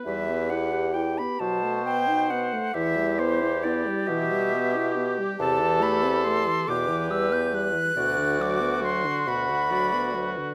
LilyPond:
<<
  \new Staff \with { instrumentName = "Flute" } { \time 6/8 \key e \minor \tempo 4. = 45 e''8 fis''8 g''16 b''16 a''8 g''8 fis''8 | e''8 c''8 d''8 e''4~ e''16 r16 | a''8 b''8 c'''8 d'''8 e'''16 g'''16 fis'''8~ | fis'''8 d'''8 c'''8 b''4. | }
  \new Staff \with { instrumentName = "Clarinet" } { \time 6/8 \key e \minor g'4. fis'4 r8 | e'4. g'4.~ | g'4. b'4. | d''4 r8 fis''8 d''8 b'8 | }
  \new Staff \with { instrumentName = "Oboe" } { \time 6/8 \key e \minor b'4 r8 c''4. | g'2. | a'4. g'4 r8 | fis'2. | }
  \new Staff \with { instrumentName = "French horn" } { \clef bass \time 6/8 \key e \minor g16 b16 e'16 g'16 e'16 b16 fis16 a16 b16 dis'16 b16 a16 | e16 g16 b16 e'16 b16 g16 e16 g16 b16 e'16 b16 g16 | c16 e16 a16 c'16 a16 e16 b,16 e16 g16 b16 g16 e16 | b,16 d16 fis16 b16 fis16 d16 b,16 d16 fis16 b16 fis16 d16 | }
  \new Staff \with { instrumentName = "Bassoon" } { \clef bass \time 6/8 \key e \minor e,4. b,4. | e,4. b,4. | e,4. e,4. | d,4. d,4. | }
>>